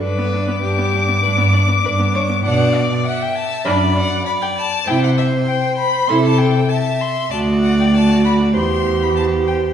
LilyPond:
<<
  \new Staff \with { instrumentName = "Violin" } { \time 4/4 \key g \lydian \tempo 4 = 98 d'''1 | \key c \lydian fis''8 d''8 fis''16 g''16 a''8 b''8 fis''8 b''16 g''16 a''8 | g''16 fis''16 e''8 g''8 b''8 c'''16 a''16 g''8 a''8 c'''8 | a''8 fis''16 g''16 a''8 b''8 c'''8. b''16 a''8 g''8 | }
  \new Staff \with { instrumentName = "Violin" } { \time 4/4 \key g \lydian b'4 g'4 b'8 d''8 b'8 cis''8 | \key c \lydian d''4 e''4 d''4 d''4 | c''2 a'4 e''4 | d''2 c''4 c''4 | }
  \new Staff \with { instrumentName = "Viola" } { \time 4/4 \key g \lydian d'16 b16 d'16 b16 d'16 b16 d'16 b16 d'16 b16 d'16 b16 d'16 b16 d'16 b16 | \key c \lydian d'8 r4. d'8 r4. | e'8 r4. e'8 r4. | fis'4 fis'4 g'2 | }
  \new Staff \with { instrumentName = "Cello" } { \clef bass \time 4/4 \key g \lydian g,4 g,4 g,4 g,4 | \key c \lydian b,4 r4 fis,4 r4 | c4 r4 c4 r4 | d,2 e,2 | }
>>